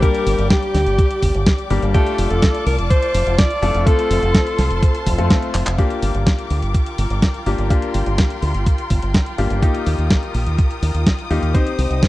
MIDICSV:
0, 0, Header, 1, 6, 480
1, 0, Start_track
1, 0, Key_signature, -2, "minor"
1, 0, Tempo, 480000
1, 24, Time_signature, 4, 2, 24, 8
1, 12081, End_track
2, 0, Start_track
2, 0, Title_t, "String section"
2, 0, Program_c, 0, 48
2, 0, Note_on_c, 0, 67, 85
2, 0, Note_on_c, 0, 74, 74
2, 0, Note_on_c, 0, 79, 74
2, 0, Note_on_c, 0, 86, 91
2, 1905, Note_off_c, 0, 74, 0
2, 1905, Note_off_c, 0, 86, 0
2, 1906, Note_off_c, 0, 67, 0
2, 1906, Note_off_c, 0, 79, 0
2, 1942, Note_on_c, 0, 74, 77
2, 1944, Note_on_c, 0, 65, 85
2, 1944, Note_on_c, 0, 81, 77
2, 1944, Note_on_c, 0, 86, 90
2, 3844, Note_off_c, 0, 74, 0
2, 3845, Note_off_c, 0, 81, 0
2, 3845, Note_off_c, 0, 86, 0
2, 3862, Note_on_c, 0, 72, 76
2, 3862, Note_on_c, 0, 81, 78
2, 3862, Note_on_c, 0, 84, 95
2, 5746, Note_off_c, 0, 65, 0
2, 5764, Note_off_c, 0, 72, 0
2, 5764, Note_off_c, 0, 81, 0
2, 5764, Note_off_c, 0, 84, 0
2, 5783, Note_on_c, 0, 79, 74
2, 5784, Note_on_c, 0, 86, 84
2, 5785, Note_on_c, 0, 65, 80
2, 5785, Note_on_c, 0, 70, 76
2, 7685, Note_off_c, 0, 86, 0
2, 7705, Note_on_c, 0, 84, 90
2, 9586, Note_off_c, 0, 70, 0
2, 9606, Note_off_c, 0, 84, 0
2, 9623, Note_on_c, 0, 70, 75
2, 9623, Note_on_c, 0, 87, 91
2, 11504, Note_off_c, 0, 79, 0
2, 11505, Note_off_c, 0, 65, 0
2, 11524, Note_off_c, 0, 70, 0
2, 11544, Note_on_c, 0, 63, 80
2, 11545, Note_on_c, 0, 72, 72
2, 11546, Note_on_c, 0, 79, 75
2, 12081, Note_off_c, 0, 63, 0
2, 12081, Note_off_c, 0, 72, 0
2, 12081, Note_off_c, 0, 79, 0
2, 12081, Note_off_c, 0, 87, 0
2, 12081, End_track
3, 0, Start_track
3, 0, Title_t, "Alto saxophone"
3, 0, Program_c, 1, 65
3, 24, Note_on_c, 1, 70, 107
3, 471, Note_off_c, 1, 70, 0
3, 504, Note_on_c, 1, 67, 96
3, 1664, Note_off_c, 1, 67, 0
3, 1944, Note_on_c, 1, 67, 98
3, 2304, Note_on_c, 1, 69, 99
3, 2319, Note_off_c, 1, 67, 0
3, 2659, Note_off_c, 1, 69, 0
3, 2665, Note_on_c, 1, 70, 101
3, 2772, Note_off_c, 1, 70, 0
3, 2904, Note_on_c, 1, 72, 110
3, 3386, Note_on_c, 1, 74, 118
3, 3401, Note_off_c, 1, 72, 0
3, 3868, Note_on_c, 1, 69, 108
3, 3883, Note_off_c, 1, 74, 0
3, 5306, Note_off_c, 1, 69, 0
3, 12081, End_track
4, 0, Start_track
4, 0, Title_t, "Grand piano"
4, 0, Program_c, 2, 0
4, 24, Note_on_c, 2, 55, 88
4, 24, Note_on_c, 2, 58, 82
4, 24, Note_on_c, 2, 62, 81
4, 24, Note_on_c, 2, 67, 95
4, 1675, Note_off_c, 2, 55, 0
4, 1675, Note_off_c, 2, 58, 0
4, 1675, Note_off_c, 2, 62, 0
4, 1675, Note_off_c, 2, 67, 0
4, 1704, Note_on_c, 2, 55, 89
4, 1705, Note_on_c, 2, 58, 81
4, 1705, Note_on_c, 2, 62, 81
4, 1705, Note_on_c, 2, 67, 101
4, 1916, Note_off_c, 2, 55, 0
4, 1916, Note_off_c, 2, 58, 0
4, 1916, Note_off_c, 2, 62, 0
4, 1916, Note_off_c, 2, 67, 0
4, 1944, Note_on_c, 2, 57, 88
4, 1944, Note_on_c, 2, 62, 84
4, 1944, Note_on_c, 2, 65, 85
4, 1944, Note_on_c, 2, 69, 98
4, 3595, Note_off_c, 2, 57, 0
4, 3595, Note_off_c, 2, 62, 0
4, 3595, Note_off_c, 2, 65, 0
4, 3595, Note_off_c, 2, 69, 0
4, 3624, Note_on_c, 2, 57, 91
4, 3624, Note_on_c, 2, 62, 82
4, 3624, Note_on_c, 2, 65, 81
4, 3624, Note_on_c, 2, 69, 101
4, 3835, Note_off_c, 2, 57, 0
4, 3835, Note_off_c, 2, 62, 0
4, 3835, Note_off_c, 2, 65, 0
4, 3835, Note_off_c, 2, 69, 0
4, 3864, Note_on_c, 2, 57, 86
4, 3864, Note_on_c, 2, 60, 83
4, 3864, Note_on_c, 2, 65, 78
4, 3864, Note_on_c, 2, 69, 96
4, 5160, Note_off_c, 2, 57, 0
4, 5160, Note_off_c, 2, 60, 0
4, 5160, Note_off_c, 2, 65, 0
4, 5160, Note_off_c, 2, 69, 0
4, 5184, Note_on_c, 2, 57, 86
4, 5184, Note_on_c, 2, 60, 79
4, 5184, Note_on_c, 2, 65, 79
4, 5185, Note_on_c, 2, 69, 95
4, 5755, Note_off_c, 2, 57, 0
4, 5755, Note_off_c, 2, 60, 0
4, 5756, Note_off_c, 2, 65, 0
4, 5756, Note_off_c, 2, 69, 0
4, 5784, Note_on_c, 2, 58, 84
4, 5784, Note_on_c, 2, 67, 96
4, 5785, Note_on_c, 2, 62, 77
4, 5785, Note_on_c, 2, 65, 78
4, 7435, Note_off_c, 2, 58, 0
4, 7435, Note_off_c, 2, 67, 0
4, 7436, Note_off_c, 2, 62, 0
4, 7436, Note_off_c, 2, 65, 0
4, 7463, Note_on_c, 2, 62, 77
4, 7463, Note_on_c, 2, 65, 81
4, 7463, Note_on_c, 2, 67, 94
4, 7464, Note_on_c, 2, 58, 83
4, 7675, Note_off_c, 2, 58, 0
4, 7675, Note_off_c, 2, 62, 0
4, 7675, Note_off_c, 2, 65, 0
4, 7675, Note_off_c, 2, 67, 0
4, 7704, Note_on_c, 2, 58, 85
4, 7704, Note_on_c, 2, 62, 79
4, 7704, Note_on_c, 2, 65, 77
4, 7704, Note_on_c, 2, 67, 93
4, 9355, Note_off_c, 2, 58, 0
4, 9355, Note_off_c, 2, 62, 0
4, 9355, Note_off_c, 2, 65, 0
4, 9355, Note_off_c, 2, 67, 0
4, 9383, Note_on_c, 2, 58, 84
4, 9383, Note_on_c, 2, 62, 76
4, 9384, Note_on_c, 2, 65, 80
4, 9384, Note_on_c, 2, 67, 96
4, 9595, Note_off_c, 2, 58, 0
4, 9595, Note_off_c, 2, 62, 0
4, 9595, Note_off_c, 2, 65, 0
4, 9595, Note_off_c, 2, 67, 0
4, 9624, Note_on_c, 2, 58, 86
4, 9624, Note_on_c, 2, 63, 79
4, 9624, Note_on_c, 2, 65, 77
4, 9624, Note_on_c, 2, 67, 95
4, 11275, Note_off_c, 2, 63, 0
4, 11275, Note_off_c, 2, 65, 0
4, 11275, Note_off_c, 2, 67, 0
4, 11276, Note_off_c, 2, 58, 0
4, 11305, Note_on_c, 2, 58, 86
4, 11305, Note_on_c, 2, 63, 80
4, 11305, Note_on_c, 2, 65, 77
4, 11306, Note_on_c, 2, 67, 97
4, 11516, Note_off_c, 2, 58, 0
4, 11516, Note_off_c, 2, 63, 0
4, 11516, Note_off_c, 2, 65, 0
4, 11516, Note_off_c, 2, 67, 0
4, 11544, Note_on_c, 2, 60, 84
4, 11544, Note_on_c, 2, 63, 77
4, 11544, Note_on_c, 2, 67, 78
4, 11544, Note_on_c, 2, 72, 96
4, 12081, Note_off_c, 2, 60, 0
4, 12081, Note_off_c, 2, 63, 0
4, 12081, Note_off_c, 2, 67, 0
4, 12081, Note_off_c, 2, 72, 0
4, 12081, End_track
5, 0, Start_track
5, 0, Title_t, "Fingered electric bass"
5, 0, Program_c, 3, 33
5, 262, Note_on_c, 3, 31, 92
5, 361, Note_off_c, 3, 31, 0
5, 383, Note_on_c, 3, 31, 87
5, 481, Note_off_c, 3, 31, 0
5, 742, Note_on_c, 3, 38, 92
5, 841, Note_off_c, 3, 38, 0
5, 864, Note_on_c, 3, 31, 89
5, 962, Note_off_c, 3, 31, 0
5, 1225, Note_on_c, 3, 31, 94
5, 1322, Note_off_c, 3, 31, 0
5, 1344, Note_on_c, 3, 31, 87
5, 1442, Note_off_c, 3, 31, 0
5, 1703, Note_on_c, 3, 31, 94
5, 1801, Note_off_c, 3, 31, 0
5, 1824, Note_on_c, 3, 31, 87
5, 1922, Note_off_c, 3, 31, 0
5, 2184, Note_on_c, 3, 29, 94
5, 2282, Note_off_c, 3, 29, 0
5, 2305, Note_on_c, 3, 29, 86
5, 2402, Note_off_c, 3, 29, 0
5, 2663, Note_on_c, 3, 36, 97
5, 2761, Note_off_c, 3, 36, 0
5, 2785, Note_on_c, 3, 29, 91
5, 2882, Note_off_c, 3, 29, 0
5, 3143, Note_on_c, 3, 29, 96
5, 3241, Note_off_c, 3, 29, 0
5, 3265, Note_on_c, 3, 29, 83
5, 3362, Note_off_c, 3, 29, 0
5, 3623, Note_on_c, 3, 29, 94
5, 3721, Note_off_c, 3, 29, 0
5, 3744, Note_on_c, 3, 29, 85
5, 3841, Note_off_c, 3, 29, 0
5, 4104, Note_on_c, 3, 29, 94
5, 4201, Note_off_c, 3, 29, 0
5, 4223, Note_on_c, 3, 29, 85
5, 4321, Note_off_c, 3, 29, 0
5, 4584, Note_on_c, 3, 36, 96
5, 4681, Note_off_c, 3, 36, 0
5, 4704, Note_on_c, 3, 29, 88
5, 4801, Note_off_c, 3, 29, 0
5, 5064, Note_on_c, 3, 29, 94
5, 5162, Note_off_c, 3, 29, 0
5, 5184, Note_on_c, 3, 41, 84
5, 5282, Note_off_c, 3, 41, 0
5, 5544, Note_on_c, 3, 29, 95
5, 5642, Note_off_c, 3, 29, 0
5, 5663, Note_on_c, 3, 29, 86
5, 5761, Note_off_c, 3, 29, 0
5, 6023, Note_on_c, 3, 31, 90
5, 6121, Note_off_c, 3, 31, 0
5, 6143, Note_on_c, 3, 31, 84
5, 6241, Note_off_c, 3, 31, 0
5, 6504, Note_on_c, 3, 38, 90
5, 6601, Note_off_c, 3, 38, 0
5, 6623, Note_on_c, 3, 31, 83
5, 6721, Note_off_c, 3, 31, 0
5, 6982, Note_on_c, 3, 31, 92
5, 7081, Note_off_c, 3, 31, 0
5, 7102, Note_on_c, 3, 31, 81
5, 7200, Note_off_c, 3, 31, 0
5, 7462, Note_on_c, 3, 31, 89
5, 7561, Note_off_c, 3, 31, 0
5, 7583, Note_on_c, 3, 31, 81
5, 7681, Note_off_c, 3, 31, 0
5, 7942, Note_on_c, 3, 31, 91
5, 8041, Note_off_c, 3, 31, 0
5, 8063, Note_on_c, 3, 31, 83
5, 8161, Note_off_c, 3, 31, 0
5, 8424, Note_on_c, 3, 38, 88
5, 8521, Note_off_c, 3, 38, 0
5, 8543, Note_on_c, 3, 31, 86
5, 8641, Note_off_c, 3, 31, 0
5, 8903, Note_on_c, 3, 31, 93
5, 9001, Note_off_c, 3, 31, 0
5, 9025, Note_on_c, 3, 31, 79
5, 9122, Note_off_c, 3, 31, 0
5, 9384, Note_on_c, 3, 31, 91
5, 9482, Note_off_c, 3, 31, 0
5, 9504, Note_on_c, 3, 31, 84
5, 9602, Note_off_c, 3, 31, 0
5, 9865, Note_on_c, 3, 39, 90
5, 9962, Note_off_c, 3, 39, 0
5, 9984, Note_on_c, 3, 39, 83
5, 10082, Note_off_c, 3, 39, 0
5, 10344, Note_on_c, 3, 34, 89
5, 10442, Note_off_c, 3, 34, 0
5, 10465, Note_on_c, 3, 39, 85
5, 10562, Note_off_c, 3, 39, 0
5, 10824, Note_on_c, 3, 39, 91
5, 10921, Note_off_c, 3, 39, 0
5, 10944, Note_on_c, 3, 39, 83
5, 11042, Note_off_c, 3, 39, 0
5, 11304, Note_on_c, 3, 39, 89
5, 11401, Note_off_c, 3, 39, 0
5, 11424, Note_on_c, 3, 39, 84
5, 11521, Note_off_c, 3, 39, 0
5, 11785, Note_on_c, 3, 36, 91
5, 11882, Note_off_c, 3, 36, 0
5, 11903, Note_on_c, 3, 36, 80
5, 12001, Note_off_c, 3, 36, 0
5, 12081, End_track
6, 0, Start_track
6, 0, Title_t, "Drums"
6, 24, Note_on_c, 9, 36, 118
6, 26, Note_on_c, 9, 42, 65
6, 124, Note_off_c, 9, 36, 0
6, 126, Note_off_c, 9, 42, 0
6, 146, Note_on_c, 9, 42, 38
6, 246, Note_off_c, 9, 42, 0
6, 266, Note_on_c, 9, 46, 107
6, 366, Note_off_c, 9, 46, 0
6, 386, Note_on_c, 9, 42, 39
6, 486, Note_off_c, 9, 42, 0
6, 504, Note_on_c, 9, 36, 117
6, 505, Note_on_c, 9, 38, 117
6, 505, Note_on_c, 9, 42, 63
6, 604, Note_off_c, 9, 36, 0
6, 605, Note_off_c, 9, 38, 0
6, 605, Note_off_c, 9, 42, 0
6, 625, Note_on_c, 9, 42, 38
6, 725, Note_off_c, 9, 42, 0
6, 745, Note_on_c, 9, 38, 61
6, 745, Note_on_c, 9, 46, 91
6, 845, Note_off_c, 9, 38, 0
6, 845, Note_off_c, 9, 46, 0
6, 865, Note_on_c, 9, 42, 39
6, 965, Note_off_c, 9, 42, 0
6, 984, Note_on_c, 9, 36, 118
6, 986, Note_on_c, 9, 42, 62
6, 1084, Note_off_c, 9, 36, 0
6, 1086, Note_off_c, 9, 42, 0
6, 1106, Note_on_c, 9, 42, 39
6, 1206, Note_off_c, 9, 42, 0
6, 1225, Note_on_c, 9, 36, 60
6, 1225, Note_on_c, 9, 46, 106
6, 1325, Note_off_c, 9, 36, 0
6, 1325, Note_off_c, 9, 46, 0
6, 1345, Note_on_c, 9, 42, 39
6, 1445, Note_off_c, 9, 42, 0
6, 1465, Note_on_c, 9, 36, 115
6, 1465, Note_on_c, 9, 38, 116
6, 1465, Note_on_c, 9, 42, 67
6, 1565, Note_off_c, 9, 36, 0
6, 1565, Note_off_c, 9, 38, 0
6, 1565, Note_off_c, 9, 42, 0
6, 1584, Note_on_c, 9, 42, 36
6, 1684, Note_off_c, 9, 42, 0
6, 1704, Note_on_c, 9, 46, 92
6, 1804, Note_off_c, 9, 46, 0
6, 1825, Note_on_c, 9, 42, 39
6, 1925, Note_off_c, 9, 42, 0
6, 1944, Note_on_c, 9, 42, 64
6, 1945, Note_on_c, 9, 36, 119
6, 2044, Note_off_c, 9, 42, 0
6, 2045, Note_off_c, 9, 36, 0
6, 2065, Note_on_c, 9, 42, 40
6, 2165, Note_off_c, 9, 42, 0
6, 2184, Note_on_c, 9, 46, 111
6, 2284, Note_off_c, 9, 46, 0
6, 2305, Note_on_c, 9, 42, 40
6, 2405, Note_off_c, 9, 42, 0
6, 2424, Note_on_c, 9, 38, 115
6, 2424, Note_on_c, 9, 42, 66
6, 2425, Note_on_c, 9, 36, 111
6, 2524, Note_off_c, 9, 38, 0
6, 2524, Note_off_c, 9, 42, 0
6, 2525, Note_off_c, 9, 36, 0
6, 2546, Note_on_c, 9, 42, 39
6, 2646, Note_off_c, 9, 42, 0
6, 2666, Note_on_c, 9, 46, 96
6, 2766, Note_off_c, 9, 46, 0
6, 2785, Note_on_c, 9, 42, 40
6, 2885, Note_off_c, 9, 42, 0
6, 2904, Note_on_c, 9, 42, 65
6, 2905, Note_on_c, 9, 36, 113
6, 3004, Note_off_c, 9, 42, 0
6, 3005, Note_off_c, 9, 36, 0
6, 3025, Note_on_c, 9, 42, 39
6, 3125, Note_off_c, 9, 42, 0
6, 3145, Note_on_c, 9, 46, 114
6, 3245, Note_off_c, 9, 46, 0
6, 3266, Note_on_c, 9, 42, 39
6, 3366, Note_off_c, 9, 42, 0
6, 3385, Note_on_c, 9, 38, 122
6, 3385, Note_on_c, 9, 42, 66
6, 3386, Note_on_c, 9, 36, 116
6, 3485, Note_off_c, 9, 38, 0
6, 3485, Note_off_c, 9, 42, 0
6, 3486, Note_off_c, 9, 36, 0
6, 3506, Note_on_c, 9, 42, 37
6, 3606, Note_off_c, 9, 42, 0
6, 3626, Note_on_c, 9, 46, 98
6, 3726, Note_off_c, 9, 46, 0
6, 3746, Note_on_c, 9, 42, 41
6, 3846, Note_off_c, 9, 42, 0
6, 3865, Note_on_c, 9, 36, 119
6, 3867, Note_on_c, 9, 42, 70
6, 3965, Note_off_c, 9, 36, 0
6, 3967, Note_off_c, 9, 42, 0
6, 3988, Note_on_c, 9, 42, 42
6, 4088, Note_off_c, 9, 42, 0
6, 4107, Note_on_c, 9, 46, 113
6, 4207, Note_off_c, 9, 46, 0
6, 4226, Note_on_c, 9, 42, 39
6, 4326, Note_off_c, 9, 42, 0
6, 4345, Note_on_c, 9, 36, 115
6, 4346, Note_on_c, 9, 38, 116
6, 4346, Note_on_c, 9, 42, 69
6, 4445, Note_off_c, 9, 36, 0
6, 4446, Note_off_c, 9, 38, 0
6, 4446, Note_off_c, 9, 42, 0
6, 4467, Note_on_c, 9, 42, 41
6, 4567, Note_off_c, 9, 42, 0
6, 4586, Note_on_c, 9, 38, 61
6, 4586, Note_on_c, 9, 46, 100
6, 4686, Note_off_c, 9, 38, 0
6, 4686, Note_off_c, 9, 46, 0
6, 4706, Note_on_c, 9, 42, 42
6, 4805, Note_off_c, 9, 42, 0
6, 4825, Note_on_c, 9, 36, 115
6, 4826, Note_on_c, 9, 42, 66
6, 4925, Note_off_c, 9, 36, 0
6, 4926, Note_off_c, 9, 42, 0
6, 4946, Note_on_c, 9, 42, 41
6, 5046, Note_off_c, 9, 42, 0
6, 5065, Note_on_c, 9, 36, 62
6, 5065, Note_on_c, 9, 46, 115
6, 5165, Note_off_c, 9, 36, 0
6, 5165, Note_off_c, 9, 46, 0
6, 5185, Note_on_c, 9, 42, 42
6, 5285, Note_off_c, 9, 42, 0
6, 5305, Note_on_c, 9, 36, 116
6, 5305, Note_on_c, 9, 38, 118
6, 5305, Note_on_c, 9, 42, 70
6, 5405, Note_off_c, 9, 36, 0
6, 5405, Note_off_c, 9, 38, 0
6, 5405, Note_off_c, 9, 42, 0
6, 5425, Note_on_c, 9, 42, 39
6, 5525, Note_off_c, 9, 42, 0
6, 5544, Note_on_c, 9, 39, 88
6, 5544, Note_on_c, 9, 46, 102
6, 5644, Note_off_c, 9, 39, 0
6, 5644, Note_off_c, 9, 46, 0
6, 5664, Note_on_c, 9, 39, 103
6, 5664, Note_on_c, 9, 42, 41
6, 5764, Note_off_c, 9, 39, 0
6, 5764, Note_off_c, 9, 42, 0
6, 5784, Note_on_c, 9, 36, 115
6, 5785, Note_on_c, 9, 42, 66
6, 5884, Note_off_c, 9, 36, 0
6, 5885, Note_off_c, 9, 42, 0
6, 5904, Note_on_c, 9, 42, 42
6, 6004, Note_off_c, 9, 42, 0
6, 6024, Note_on_c, 9, 46, 109
6, 6124, Note_off_c, 9, 46, 0
6, 6146, Note_on_c, 9, 42, 40
6, 6246, Note_off_c, 9, 42, 0
6, 6264, Note_on_c, 9, 36, 118
6, 6267, Note_on_c, 9, 38, 115
6, 6267, Note_on_c, 9, 42, 66
6, 6364, Note_off_c, 9, 36, 0
6, 6367, Note_off_c, 9, 38, 0
6, 6367, Note_off_c, 9, 42, 0
6, 6386, Note_on_c, 9, 42, 41
6, 6486, Note_off_c, 9, 42, 0
6, 6505, Note_on_c, 9, 46, 95
6, 6605, Note_off_c, 9, 46, 0
6, 6624, Note_on_c, 9, 42, 40
6, 6724, Note_off_c, 9, 42, 0
6, 6744, Note_on_c, 9, 36, 111
6, 6744, Note_on_c, 9, 42, 68
6, 6844, Note_off_c, 9, 36, 0
6, 6844, Note_off_c, 9, 42, 0
6, 6864, Note_on_c, 9, 42, 41
6, 6964, Note_off_c, 9, 42, 0
6, 6983, Note_on_c, 9, 46, 107
6, 7083, Note_off_c, 9, 46, 0
6, 7104, Note_on_c, 9, 42, 40
6, 7204, Note_off_c, 9, 42, 0
6, 7223, Note_on_c, 9, 36, 113
6, 7224, Note_on_c, 9, 38, 119
6, 7224, Note_on_c, 9, 42, 67
6, 7323, Note_off_c, 9, 36, 0
6, 7324, Note_off_c, 9, 38, 0
6, 7324, Note_off_c, 9, 42, 0
6, 7343, Note_on_c, 9, 42, 39
6, 7443, Note_off_c, 9, 42, 0
6, 7464, Note_on_c, 9, 46, 96
6, 7564, Note_off_c, 9, 46, 0
6, 7584, Note_on_c, 9, 42, 39
6, 7684, Note_off_c, 9, 42, 0
6, 7704, Note_on_c, 9, 36, 123
6, 7704, Note_on_c, 9, 42, 68
6, 7804, Note_off_c, 9, 36, 0
6, 7804, Note_off_c, 9, 42, 0
6, 7823, Note_on_c, 9, 42, 41
6, 7923, Note_off_c, 9, 42, 0
6, 7942, Note_on_c, 9, 46, 106
6, 8042, Note_off_c, 9, 46, 0
6, 8063, Note_on_c, 9, 42, 40
6, 8163, Note_off_c, 9, 42, 0
6, 8183, Note_on_c, 9, 38, 120
6, 8183, Note_on_c, 9, 42, 68
6, 8184, Note_on_c, 9, 36, 122
6, 8283, Note_off_c, 9, 38, 0
6, 8283, Note_off_c, 9, 42, 0
6, 8284, Note_off_c, 9, 36, 0
6, 8304, Note_on_c, 9, 42, 39
6, 8404, Note_off_c, 9, 42, 0
6, 8424, Note_on_c, 9, 46, 89
6, 8524, Note_off_c, 9, 46, 0
6, 8544, Note_on_c, 9, 42, 41
6, 8644, Note_off_c, 9, 42, 0
6, 8664, Note_on_c, 9, 36, 119
6, 8664, Note_on_c, 9, 42, 67
6, 8764, Note_off_c, 9, 36, 0
6, 8764, Note_off_c, 9, 42, 0
6, 8783, Note_on_c, 9, 42, 40
6, 8883, Note_off_c, 9, 42, 0
6, 8902, Note_on_c, 9, 46, 103
6, 8904, Note_on_c, 9, 36, 61
6, 9002, Note_off_c, 9, 46, 0
6, 9004, Note_off_c, 9, 36, 0
6, 9024, Note_on_c, 9, 42, 41
6, 9124, Note_off_c, 9, 42, 0
6, 9144, Note_on_c, 9, 36, 121
6, 9144, Note_on_c, 9, 38, 122
6, 9144, Note_on_c, 9, 42, 71
6, 9244, Note_off_c, 9, 36, 0
6, 9244, Note_off_c, 9, 38, 0
6, 9244, Note_off_c, 9, 42, 0
6, 9263, Note_on_c, 9, 42, 39
6, 9363, Note_off_c, 9, 42, 0
6, 9383, Note_on_c, 9, 46, 96
6, 9483, Note_off_c, 9, 46, 0
6, 9504, Note_on_c, 9, 42, 42
6, 9604, Note_off_c, 9, 42, 0
6, 9624, Note_on_c, 9, 36, 122
6, 9624, Note_on_c, 9, 42, 65
6, 9724, Note_off_c, 9, 36, 0
6, 9724, Note_off_c, 9, 42, 0
6, 9745, Note_on_c, 9, 42, 41
6, 9845, Note_off_c, 9, 42, 0
6, 9865, Note_on_c, 9, 46, 97
6, 9965, Note_off_c, 9, 46, 0
6, 9986, Note_on_c, 9, 42, 39
6, 10086, Note_off_c, 9, 42, 0
6, 10105, Note_on_c, 9, 36, 123
6, 10105, Note_on_c, 9, 38, 119
6, 10105, Note_on_c, 9, 42, 67
6, 10205, Note_off_c, 9, 36, 0
6, 10205, Note_off_c, 9, 38, 0
6, 10205, Note_off_c, 9, 42, 0
6, 10226, Note_on_c, 9, 42, 39
6, 10326, Note_off_c, 9, 42, 0
6, 10345, Note_on_c, 9, 46, 89
6, 10445, Note_off_c, 9, 46, 0
6, 10465, Note_on_c, 9, 42, 39
6, 10565, Note_off_c, 9, 42, 0
6, 10584, Note_on_c, 9, 42, 67
6, 10585, Note_on_c, 9, 36, 121
6, 10684, Note_off_c, 9, 42, 0
6, 10685, Note_off_c, 9, 36, 0
6, 10706, Note_on_c, 9, 42, 39
6, 10806, Note_off_c, 9, 42, 0
6, 10827, Note_on_c, 9, 46, 101
6, 10927, Note_off_c, 9, 46, 0
6, 10947, Note_on_c, 9, 42, 41
6, 11047, Note_off_c, 9, 42, 0
6, 11065, Note_on_c, 9, 36, 121
6, 11066, Note_on_c, 9, 38, 124
6, 11066, Note_on_c, 9, 42, 67
6, 11165, Note_off_c, 9, 36, 0
6, 11166, Note_off_c, 9, 38, 0
6, 11166, Note_off_c, 9, 42, 0
6, 11186, Note_on_c, 9, 42, 37
6, 11286, Note_off_c, 9, 42, 0
6, 11306, Note_on_c, 9, 46, 89
6, 11406, Note_off_c, 9, 46, 0
6, 11427, Note_on_c, 9, 42, 39
6, 11527, Note_off_c, 9, 42, 0
6, 11545, Note_on_c, 9, 36, 123
6, 11546, Note_on_c, 9, 42, 63
6, 11645, Note_off_c, 9, 36, 0
6, 11646, Note_off_c, 9, 42, 0
6, 11667, Note_on_c, 9, 42, 39
6, 11767, Note_off_c, 9, 42, 0
6, 11787, Note_on_c, 9, 46, 96
6, 11887, Note_off_c, 9, 46, 0
6, 11907, Note_on_c, 9, 42, 40
6, 12007, Note_off_c, 9, 42, 0
6, 12025, Note_on_c, 9, 36, 117
6, 12027, Note_on_c, 9, 38, 116
6, 12027, Note_on_c, 9, 42, 63
6, 12081, Note_off_c, 9, 36, 0
6, 12081, Note_off_c, 9, 38, 0
6, 12081, Note_off_c, 9, 42, 0
6, 12081, End_track
0, 0, End_of_file